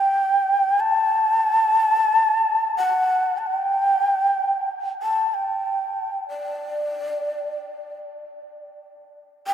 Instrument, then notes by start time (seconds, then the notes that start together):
shakuhachi
Already playing: G5
0.80 A5
2.77 F#5
3.38 A5
3.46 G5
5.03 A5
5.34 G5
6.29 D5
9.47 G5